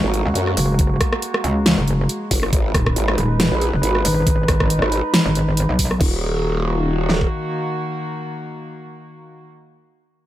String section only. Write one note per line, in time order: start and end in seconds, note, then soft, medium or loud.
0.00 5.97 G#3 medium
0.00 2.49 A#3 medium
0.00 2.49 F#4 medium
2.53 5.97 D#4 medium
2.53 5.97 B4 medium
6.01 9.45 D#3 medium
6.01 9.45 A#3 medium
6.01 9.45 F#4 medium